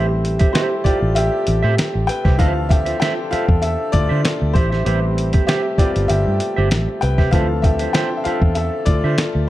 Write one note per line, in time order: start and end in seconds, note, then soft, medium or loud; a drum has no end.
0.00 0.46 A1 loud
0.00 7.29 C3 medium
0.00 0.50 G3 medium
0.00 2.37 A3 medium
0.00 0.50 C4 medium
0.00 0.51 E4 medium
0.00 0.11 G4 medium
0.00 2.37 G4 loud
0.00 0.50 B4 medium
0.00 0.51 C5 loud
0.09 muted clean electric guitar stroke medium
0.23 muted clean electric guitar stroke soft
0.23 closed hi-hat medium
0.39 0.52 G4 soft
0.39 0.53 C5 medium
0.39 0.52 E5 medium
0.39 kick loud
0.39 closed hi-hat medium
0.53 0.83 E4 medium
0.53 0.75 G4 medium
0.53 0.85 C5 medium
0.53 0.71 C5 medium
0.53 0.70 E5 medium
0.53 snare loud
0.53 closed hi-hat medium
0.71 muted clean electric guitar stroke soft
0.84 1.14 F4 medium
0.84 1.00 G4 medium
0.84 1.00 C5 medium
0.84 1.16 D5 medium
0.84 1.01 G5 medium
0.84 muted fingered electric bass stroke medium
0.84 kick medium
0.84 closed hi-hat medium
1.01 1.29 A1 medium
1.01 muted clean electric guitar stroke soft
1.15 2.05 G4 medium
1.15 2.11 E5 loud
1.15 muted clean electric guitar stroke soft
1.15 closed hi-hat loud
1.32 muted clean electric guitar stroke soft
1.47 1.62 A1 medium
1.47 closed hi-hat medium
1.63 1.76 A2 medium
1.63 1.76 G4 medium
1.63 1.76 C5 medium
1.63 1.77 E5 medium
1.77 muted clean electric guitar stroke soft
1.77 muted fingered electric bass stroke medium
1.77 snare loud
1.77 closed hi-hat loud
1.94 2.07 A1 medium
1.94 muted clean electric guitar stroke soft
2.07 2.38 B4 medium
2.07 2.37 G5 loud
2.07 closed hi-hat medium
2.24 2.40 C2 medium
2.24 2.38 G4 medium
2.24 2.38 C5 medium
2.24 2.39 E5 medium
2.24 kick loud
2.24 snare soft
2.38 2.93 D2 loud
2.38 4.53 D3 medium
2.38 2.82 E3 medium
2.38 2.81 F3 medium
2.38 2.82 C4 medium
2.38 4.53 D4 medium
2.38 2.60 F4 medium
2.38 4.53 A4 medium
2.38 2.69 A4 medium
2.38 2.55 C5 medium
2.38 2.54 E5 medium
2.38 2.68 F5 loud
2.38 kick loud
2.38 closed hi-hat medium
2.55 muted clean electric guitar stroke soft
2.69 2.99 G4 medium
2.69 2.98 E5 loud
2.69 muted clean electric guitar stroke soft
2.69 kick loud
2.69 closed hi-hat medium
2.85 2.99 F4 soft
2.85 2.99 C5 medium
2.85 2.99 E5 medium
2.85 closed hi-hat medium
3.00 3.19 F4 medium
3.00 3.17 C5 medium
3.00 3.30 C5 medium
3.00 3.15 E5 loud
3.00 3.29 G5 loud
3.00 snare loud
3.00 closed hi-hat medium
3.17 muted clean electric guitar stroke soft
3.31 3.46 F4 medium
3.31 3.61 A4 medium
3.31 3.47 C5 medium
3.31 3.47 E5 medium
3.31 3.60 F5 loud
3.31 muted fingered electric bass stroke medium
3.31 closed hi-hat medium
3.49 3.75 E2 medium
3.49 kick loud
3.62 3.92 A4 medium
3.62 3.94 E5 loud
3.62 muted clean electric guitar stroke soft
3.62 closed hi-hat loud
3.79 muted clean electric guitar stroke soft
3.92 4.08 D2 medium
3.92 4.52 F4 medium
3.92 4.57 D5 loud
3.92 kick loud
3.92 closed hi-hat medium
4.09 4.23 D3 loud
4.09 4.22 F4 medium
4.09 4.23 C5 medium
4.09 4.24 E5 medium
4.23 muted clean electric guitar stroke soft
4.23 snare loud
4.23 closed hi-hat loud
4.40 4.54 D2 medium
4.40 muted clean electric guitar stroke soft
4.53 4.82 A1 loud
4.53 7.31 A3 medium
4.53 5.44 E4 medium
4.53 4.70 G4 medium
4.53 7.30 G4 loud
4.53 5.43 C5 medium
4.53 4.70 C5 medium
4.53 4.70 E5 medium
4.53 kick loud
4.53 closed hi-hat medium
4.71 4.84 G4 soft
4.71 4.85 C5 medium
4.71 4.84 E5 medium
4.71 snare soft
4.85 5.39 A1 loud
4.85 5.28 G3 medium
4.85 5.29 C4 medium
4.85 5.04 G4 medium
4.85 5.28 B4 medium
4.85 5.02 C5 medium
4.85 5.01 E5 medium
4.85 closed hi-hat medium
5.02 muted clean electric guitar stroke medium
5.16 muted clean electric guitar stroke soft
5.16 closed hi-hat medium
5.33 5.46 G4 soft
5.33 5.47 C5 soft
5.33 5.46 E5 medium
5.33 kick loud
5.33 closed hi-hat medium
5.47 5.66 G4 medium
5.47 5.77 G4 medium
5.47 5.64 C5 medium
5.47 5.76 E5 medium
5.47 5.63 E5 medium
5.47 snare loud
5.47 closed hi-hat medium
5.64 muted clean electric guitar stroke soft
5.78 6.07 G3 soft
5.78 6.07 B3 soft
5.78 6.07 C4 medium
5.78 6.08 F4 medium
5.78 5.93 G4 soft
5.78 5.93 C5 medium
5.78 6.07 D5 medium
5.78 5.94 G5 medium
5.78 muted fingered electric bass stroke soft
5.78 kick medium
5.78 closed hi-hat medium
5.96 6.08 G1 loud
5.96 closed hi-hat medium
6.08 6.24 G1 loud
6.08 6.98 G4 medium
6.08 6.98 E5 loud
6.08 muted clean electric guitar stroke soft
6.08 closed hi-hat loud
6.26 6.39 G2 medium
6.26 muted clean electric guitar stroke soft
6.40 closed hi-hat medium
6.56 6.70 G1 medium
6.56 6.70 G4 medium
6.56 6.71 C5 medium
6.56 6.71 E5 medium
6.71 6.86 A1 medium
6.71 snare loud
6.71 closed hi-hat loud
6.88 muted clean electric guitar stroke soft
7.01 7.29 C2 medium
7.01 7.10 B4 medium
7.01 7.08 G5 loud
7.01 closed hi-hat medium
7.18 7.32 G4 medium
7.18 7.33 C5 medium
7.18 7.33 E5 medium
7.18 kick medium
7.18 snare soft
7.31 7.86 D2 loud
7.31 9.47 D3 medium
7.31 7.75 E3 medium
7.31 7.75 F3 medium
7.31 7.75 C4 soft
7.31 9.47 C4 medium
7.31 9.47 D4 medium
7.31 7.52 F4 medium
7.31 9.47 A4 loud
7.31 7.62 A4 medium
7.31 7.50 C5 medium
7.31 7.49 E5 medium
7.31 7.64 F5 loud
7.31 kick loud
7.31 closed hi-hat medium
7.50 muted clean electric guitar stroke soft
7.62 7.71 G4 medium
7.62 7.69 E5 medium
7.62 muted clean electric guitar stroke soft
7.62 kick loud
7.62 closed hi-hat medium
7.79 7.93 F4 soft
7.79 7.94 C5 soft
7.79 7.93 E5 medium
7.79 closed hi-hat medium
7.93 8.13 F4 medium
7.93 8.12 C5 medium
7.93 8.18 C5 medium
7.93 8.10 E5 medium
7.93 8.19 G5 loud
7.93 snare loud
7.93 closed hi-hat medium
8.12 muted clean electric guitar stroke soft
8.17 8.25 E5 medium
8.24 8.41 F4 medium
8.24 8.55 A4 medium
8.24 8.41 C5 medium
8.24 8.41 E5 medium
8.24 8.57 F5 medium
8.24 muted fingered electric bass stroke medium
8.24 closed hi-hat medium
8.42 8.69 E2 medium
8.42 muted clean electric guitar stroke soft
8.42 kick loud
8.55 8.64 A4 medium
8.55 8.62 E5 loud
8.55 muted clean electric guitar stroke soft
8.55 closed hi-hat medium
8.74 muted clean electric guitar stroke soft
8.85 9.02 D2 loud
8.85 9.45 F4 medium
8.85 9.49 D5 loud
8.85 kick loud
8.85 closed hi-hat medium
9.04 9.16 D3 loud
9.04 9.17 F4 medium
9.04 9.18 C5 medium
9.04 9.19 E5 medium
9.18 snare loud
9.18 closed hi-hat loud
9.35 9.47 D2 medium
9.35 muted clean electric guitar stroke soft